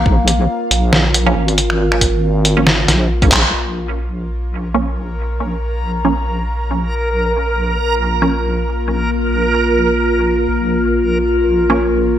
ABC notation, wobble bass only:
X:1
M:4/4
L:1/8
Q:"Swing 16ths" 1/4=138
K:Bbm
V:1 name="Wobble bass" clef=bass
B,,,2 z B,,,3 A,,,2- | A,,, A,,,4 B,,,2 B,,, | B,,,8- | B,,,8- |
B,,,8- | B,,,8 | B,,,8 |]